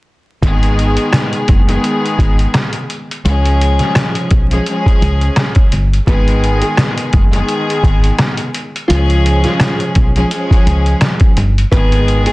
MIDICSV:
0, 0, Header, 1, 5, 480
1, 0, Start_track
1, 0, Tempo, 705882
1, 289, Time_signature, 4, 2, 24, 8
1, 8382, End_track
2, 0, Start_track
2, 0, Title_t, "Nylon-string guitar"
2, 0, Program_c, 0, 24
2, 4138, Note_on_c, 0, 71, 95
2, 4486, Note_off_c, 0, 71, 0
2, 4501, Note_on_c, 0, 68, 71
2, 4718, Note_off_c, 0, 68, 0
2, 6037, Note_on_c, 0, 65, 104
2, 6395, Note_off_c, 0, 65, 0
2, 6423, Note_on_c, 0, 65, 80
2, 6639, Note_off_c, 0, 65, 0
2, 7966, Note_on_c, 0, 71, 97
2, 8320, Note_off_c, 0, 71, 0
2, 8339, Note_on_c, 0, 68, 71
2, 8382, Note_off_c, 0, 68, 0
2, 8382, End_track
3, 0, Start_track
3, 0, Title_t, "String section"
3, 0, Program_c, 1, 48
3, 287, Note_on_c, 1, 51, 104
3, 294, Note_on_c, 1, 56, 103
3, 300, Note_on_c, 1, 59, 91
3, 307, Note_on_c, 1, 68, 115
3, 1067, Note_off_c, 1, 51, 0
3, 1071, Note_off_c, 1, 56, 0
3, 1074, Note_off_c, 1, 59, 0
3, 1077, Note_off_c, 1, 68, 0
3, 1129, Note_on_c, 1, 51, 99
3, 1136, Note_on_c, 1, 56, 93
3, 1142, Note_on_c, 1, 59, 93
3, 1148, Note_on_c, 1, 68, 112
3, 1903, Note_off_c, 1, 51, 0
3, 1906, Note_off_c, 1, 56, 0
3, 1909, Note_off_c, 1, 59, 0
3, 1912, Note_off_c, 1, 68, 0
3, 2204, Note_on_c, 1, 53, 100
3, 2210, Note_on_c, 1, 56, 93
3, 2217, Note_on_c, 1, 61, 96
3, 2224, Note_on_c, 1, 68, 113
3, 2986, Note_off_c, 1, 53, 0
3, 2989, Note_off_c, 1, 56, 0
3, 2992, Note_off_c, 1, 61, 0
3, 2996, Note_off_c, 1, 68, 0
3, 3056, Note_on_c, 1, 53, 93
3, 3063, Note_on_c, 1, 56, 79
3, 3069, Note_on_c, 1, 61, 80
3, 3075, Note_on_c, 1, 68, 101
3, 3157, Note_off_c, 1, 53, 0
3, 3164, Note_off_c, 1, 56, 0
3, 3165, Note_on_c, 1, 53, 103
3, 3169, Note_off_c, 1, 61, 0
3, 3172, Note_on_c, 1, 56, 95
3, 3177, Note_off_c, 1, 68, 0
3, 3178, Note_on_c, 1, 61, 87
3, 3185, Note_on_c, 1, 68, 114
3, 3836, Note_off_c, 1, 53, 0
3, 3840, Note_off_c, 1, 56, 0
3, 3843, Note_off_c, 1, 61, 0
3, 3846, Note_off_c, 1, 68, 0
3, 4127, Note_on_c, 1, 51, 105
3, 4134, Note_on_c, 1, 56, 105
3, 4140, Note_on_c, 1, 59, 94
3, 4146, Note_on_c, 1, 68, 117
3, 4907, Note_off_c, 1, 51, 0
3, 4911, Note_off_c, 1, 56, 0
3, 4914, Note_off_c, 1, 59, 0
3, 4917, Note_off_c, 1, 68, 0
3, 4971, Note_on_c, 1, 51, 101
3, 4977, Note_on_c, 1, 56, 92
3, 4984, Note_on_c, 1, 59, 95
3, 4991, Note_on_c, 1, 68, 118
3, 5744, Note_off_c, 1, 51, 0
3, 5747, Note_off_c, 1, 56, 0
3, 5750, Note_off_c, 1, 59, 0
3, 5753, Note_off_c, 1, 68, 0
3, 6044, Note_on_c, 1, 53, 105
3, 6050, Note_on_c, 1, 56, 91
3, 6057, Note_on_c, 1, 61, 97
3, 6063, Note_on_c, 1, 68, 115
3, 6826, Note_off_c, 1, 53, 0
3, 6829, Note_off_c, 1, 56, 0
3, 6832, Note_off_c, 1, 61, 0
3, 6835, Note_off_c, 1, 68, 0
3, 6896, Note_on_c, 1, 53, 94
3, 6902, Note_on_c, 1, 56, 80
3, 6909, Note_on_c, 1, 61, 80
3, 6915, Note_on_c, 1, 68, 104
3, 6996, Note_off_c, 1, 53, 0
3, 7003, Note_off_c, 1, 56, 0
3, 7004, Note_on_c, 1, 53, 106
3, 7009, Note_off_c, 1, 61, 0
3, 7011, Note_on_c, 1, 56, 96
3, 7016, Note_off_c, 1, 68, 0
3, 7017, Note_on_c, 1, 61, 91
3, 7024, Note_on_c, 1, 68, 110
3, 7676, Note_off_c, 1, 53, 0
3, 7679, Note_off_c, 1, 56, 0
3, 7682, Note_off_c, 1, 61, 0
3, 7686, Note_off_c, 1, 68, 0
3, 7965, Note_on_c, 1, 51, 110
3, 7972, Note_on_c, 1, 56, 104
3, 7979, Note_on_c, 1, 59, 94
3, 7986, Note_on_c, 1, 68, 123
3, 8382, Note_off_c, 1, 51, 0
3, 8382, Note_off_c, 1, 56, 0
3, 8382, Note_off_c, 1, 59, 0
3, 8382, Note_off_c, 1, 68, 0
3, 8382, End_track
4, 0, Start_track
4, 0, Title_t, "Fingered electric bass"
4, 0, Program_c, 2, 33
4, 291, Note_on_c, 2, 32, 110
4, 655, Note_off_c, 2, 32, 0
4, 1013, Note_on_c, 2, 30, 88
4, 1193, Note_off_c, 2, 30, 0
4, 1489, Note_on_c, 2, 32, 83
4, 1671, Note_off_c, 2, 32, 0
4, 2211, Note_on_c, 2, 37, 103
4, 2575, Note_off_c, 2, 37, 0
4, 2933, Note_on_c, 2, 35, 85
4, 3114, Note_off_c, 2, 35, 0
4, 3411, Note_on_c, 2, 37, 94
4, 3593, Note_off_c, 2, 37, 0
4, 3891, Note_on_c, 2, 31, 86
4, 4072, Note_off_c, 2, 31, 0
4, 4131, Note_on_c, 2, 32, 108
4, 4495, Note_off_c, 2, 32, 0
4, 4853, Note_on_c, 2, 30, 93
4, 5034, Note_off_c, 2, 30, 0
4, 5329, Note_on_c, 2, 32, 88
4, 5511, Note_off_c, 2, 32, 0
4, 6052, Note_on_c, 2, 37, 108
4, 6416, Note_off_c, 2, 37, 0
4, 6773, Note_on_c, 2, 35, 89
4, 6954, Note_off_c, 2, 35, 0
4, 7251, Note_on_c, 2, 37, 91
4, 7432, Note_off_c, 2, 37, 0
4, 7731, Note_on_c, 2, 31, 88
4, 7913, Note_off_c, 2, 31, 0
4, 7970, Note_on_c, 2, 32, 110
4, 8334, Note_off_c, 2, 32, 0
4, 8382, End_track
5, 0, Start_track
5, 0, Title_t, "Drums"
5, 289, Note_on_c, 9, 36, 114
5, 292, Note_on_c, 9, 42, 96
5, 357, Note_off_c, 9, 36, 0
5, 360, Note_off_c, 9, 42, 0
5, 427, Note_on_c, 9, 42, 56
5, 495, Note_off_c, 9, 42, 0
5, 537, Note_on_c, 9, 42, 76
5, 605, Note_off_c, 9, 42, 0
5, 657, Note_on_c, 9, 42, 60
5, 725, Note_off_c, 9, 42, 0
5, 765, Note_on_c, 9, 37, 96
5, 768, Note_on_c, 9, 38, 111
5, 776, Note_on_c, 9, 42, 79
5, 833, Note_off_c, 9, 37, 0
5, 836, Note_off_c, 9, 38, 0
5, 844, Note_off_c, 9, 42, 0
5, 903, Note_on_c, 9, 42, 55
5, 971, Note_off_c, 9, 42, 0
5, 1006, Note_on_c, 9, 42, 73
5, 1011, Note_on_c, 9, 36, 98
5, 1074, Note_off_c, 9, 42, 0
5, 1079, Note_off_c, 9, 36, 0
5, 1147, Note_on_c, 9, 42, 48
5, 1215, Note_off_c, 9, 42, 0
5, 1251, Note_on_c, 9, 42, 86
5, 1319, Note_off_c, 9, 42, 0
5, 1398, Note_on_c, 9, 42, 53
5, 1466, Note_off_c, 9, 42, 0
5, 1488, Note_on_c, 9, 36, 92
5, 1495, Note_on_c, 9, 42, 68
5, 1556, Note_off_c, 9, 36, 0
5, 1563, Note_off_c, 9, 42, 0
5, 1626, Note_on_c, 9, 42, 50
5, 1694, Note_off_c, 9, 42, 0
5, 1727, Note_on_c, 9, 37, 90
5, 1727, Note_on_c, 9, 42, 70
5, 1729, Note_on_c, 9, 38, 108
5, 1795, Note_off_c, 9, 37, 0
5, 1795, Note_off_c, 9, 42, 0
5, 1797, Note_off_c, 9, 38, 0
5, 1855, Note_on_c, 9, 42, 55
5, 1923, Note_off_c, 9, 42, 0
5, 1971, Note_on_c, 9, 42, 72
5, 2039, Note_off_c, 9, 42, 0
5, 2117, Note_on_c, 9, 42, 41
5, 2185, Note_off_c, 9, 42, 0
5, 2214, Note_on_c, 9, 42, 97
5, 2282, Note_off_c, 9, 42, 0
5, 2349, Note_on_c, 9, 42, 57
5, 2417, Note_off_c, 9, 42, 0
5, 2458, Note_on_c, 9, 42, 76
5, 2526, Note_off_c, 9, 42, 0
5, 2579, Note_on_c, 9, 42, 63
5, 2584, Note_on_c, 9, 38, 37
5, 2647, Note_off_c, 9, 42, 0
5, 2652, Note_off_c, 9, 38, 0
5, 2687, Note_on_c, 9, 37, 98
5, 2690, Note_on_c, 9, 38, 114
5, 2698, Note_on_c, 9, 42, 79
5, 2755, Note_off_c, 9, 37, 0
5, 2758, Note_off_c, 9, 38, 0
5, 2766, Note_off_c, 9, 42, 0
5, 2824, Note_on_c, 9, 42, 55
5, 2892, Note_off_c, 9, 42, 0
5, 2928, Note_on_c, 9, 42, 77
5, 2932, Note_on_c, 9, 36, 100
5, 2996, Note_off_c, 9, 42, 0
5, 3000, Note_off_c, 9, 36, 0
5, 3068, Note_on_c, 9, 42, 50
5, 3136, Note_off_c, 9, 42, 0
5, 3172, Note_on_c, 9, 42, 89
5, 3240, Note_off_c, 9, 42, 0
5, 3305, Note_on_c, 9, 36, 96
5, 3318, Note_on_c, 9, 42, 53
5, 3373, Note_off_c, 9, 36, 0
5, 3386, Note_off_c, 9, 42, 0
5, 3416, Note_on_c, 9, 42, 69
5, 3484, Note_off_c, 9, 42, 0
5, 3545, Note_on_c, 9, 42, 50
5, 3613, Note_off_c, 9, 42, 0
5, 3646, Note_on_c, 9, 37, 91
5, 3646, Note_on_c, 9, 42, 71
5, 3649, Note_on_c, 9, 38, 113
5, 3714, Note_off_c, 9, 37, 0
5, 3714, Note_off_c, 9, 42, 0
5, 3717, Note_off_c, 9, 38, 0
5, 3774, Note_on_c, 9, 42, 56
5, 3781, Note_on_c, 9, 36, 91
5, 3842, Note_off_c, 9, 42, 0
5, 3849, Note_off_c, 9, 36, 0
5, 3890, Note_on_c, 9, 42, 71
5, 3958, Note_off_c, 9, 42, 0
5, 4036, Note_on_c, 9, 42, 43
5, 4104, Note_off_c, 9, 42, 0
5, 4129, Note_on_c, 9, 36, 118
5, 4133, Note_on_c, 9, 42, 98
5, 4197, Note_off_c, 9, 36, 0
5, 4201, Note_off_c, 9, 42, 0
5, 4268, Note_on_c, 9, 42, 54
5, 4336, Note_off_c, 9, 42, 0
5, 4377, Note_on_c, 9, 42, 76
5, 4445, Note_off_c, 9, 42, 0
5, 4499, Note_on_c, 9, 42, 60
5, 4567, Note_off_c, 9, 42, 0
5, 4606, Note_on_c, 9, 37, 97
5, 4609, Note_on_c, 9, 38, 114
5, 4616, Note_on_c, 9, 42, 83
5, 4674, Note_off_c, 9, 37, 0
5, 4677, Note_off_c, 9, 38, 0
5, 4684, Note_off_c, 9, 42, 0
5, 4743, Note_on_c, 9, 42, 59
5, 4811, Note_off_c, 9, 42, 0
5, 4847, Note_on_c, 9, 42, 80
5, 4851, Note_on_c, 9, 36, 103
5, 4915, Note_off_c, 9, 42, 0
5, 4919, Note_off_c, 9, 36, 0
5, 4986, Note_on_c, 9, 42, 51
5, 5054, Note_off_c, 9, 42, 0
5, 5090, Note_on_c, 9, 42, 92
5, 5158, Note_off_c, 9, 42, 0
5, 5237, Note_on_c, 9, 42, 53
5, 5305, Note_off_c, 9, 42, 0
5, 5327, Note_on_c, 9, 36, 92
5, 5334, Note_on_c, 9, 42, 68
5, 5395, Note_off_c, 9, 36, 0
5, 5402, Note_off_c, 9, 42, 0
5, 5466, Note_on_c, 9, 42, 51
5, 5534, Note_off_c, 9, 42, 0
5, 5566, Note_on_c, 9, 37, 93
5, 5566, Note_on_c, 9, 42, 72
5, 5568, Note_on_c, 9, 38, 111
5, 5634, Note_off_c, 9, 37, 0
5, 5634, Note_off_c, 9, 42, 0
5, 5636, Note_off_c, 9, 38, 0
5, 5694, Note_on_c, 9, 42, 57
5, 5762, Note_off_c, 9, 42, 0
5, 5810, Note_on_c, 9, 42, 73
5, 5878, Note_off_c, 9, 42, 0
5, 5956, Note_on_c, 9, 42, 42
5, 6024, Note_off_c, 9, 42, 0
5, 6052, Note_on_c, 9, 42, 100
5, 6120, Note_off_c, 9, 42, 0
5, 6187, Note_on_c, 9, 42, 56
5, 6255, Note_off_c, 9, 42, 0
5, 6296, Note_on_c, 9, 42, 78
5, 6364, Note_off_c, 9, 42, 0
5, 6418, Note_on_c, 9, 42, 60
5, 6423, Note_on_c, 9, 38, 39
5, 6486, Note_off_c, 9, 42, 0
5, 6491, Note_off_c, 9, 38, 0
5, 6526, Note_on_c, 9, 37, 97
5, 6528, Note_on_c, 9, 38, 119
5, 6536, Note_on_c, 9, 42, 82
5, 6594, Note_off_c, 9, 37, 0
5, 6596, Note_off_c, 9, 38, 0
5, 6604, Note_off_c, 9, 42, 0
5, 6664, Note_on_c, 9, 42, 58
5, 6732, Note_off_c, 9, 42, 0
5, 6767, Note_on_c, 9, 42, 78
5, 6772, Note_on_c, 9, 36, 104
5, 6835, Note_off_c, 9, 42, 0
5, 6840, Note_off_c, 9, 36, 0
5, 6907, Note_on_c, 9, 42, 50
5, 6975, Note_off_c, 9, 42, 0
5, 7011, Note_on_c, 9, 42, 93
5, 7079, Note_off_c, 9, 42, 0
5, 7145, Note_on_c, 9, 36, 99
5, 7158, Note_on_c, 9, 42, 56
5, 7213, Note_off_c, 9, 36, 0
5, 7226, Note_off_c, 9, 42, 0
5, 7255, Note_on_c, 9, 42, 72
5, 7323, Note_off_c, 9, 42, 0
5, 7386, Note_on_c, 9, 42, 52
5, 7454, Note_off_c, 9, 42, 0
5, 7486, Note_on_c, 9, 37, 90
5, 7486, Note_on_c, 9, 42, 74
5, 7489, Note_on_c, 9, 38, 116
5, 7554, Note_off_c, 9, 37, 0
5, 7554, Note_off_c, 9, 42, 0
5, 7557, Note_off_c, 9, 38, 0
5, 7614, Note_on_c, 9, 42, 57
5, 7621, Note_on_c, 9, 36, 93
5, 7682, Note_off_c, 9, 42, 0
5, 7689, Note_off_c, 9, 36, 0
5, 7730, Note_on_c, 9, 42, 74
5, 7798, Note_off_c, 9, 42, 0
5, 7875, Note_on_c, 9, 42, 43
5, 7943, Note_off_c, 9, 42, 0
5, 7969, Note_on_c, 9, 36, 117
5, 7973, Note_on_c, 9, 42, 100
5, 8037, Note_off_c, 9, 36, 0
5, 8041, Note_off_c, 9, 42, 0
5, 8107, Note_on_c, 9, 42, 58
5, 8175, Note_off_c, 9, 42, 0
5, 8216, Note_on_c, 9, 42, 77
5, 8284, Note_off_c, 9, 42, 0
5, 8337, Note_on_c, 9, 42, 62
5, 8382, Note_off_c, 9, 42, 0
5, 8382, End_track
0, 0, End_of_file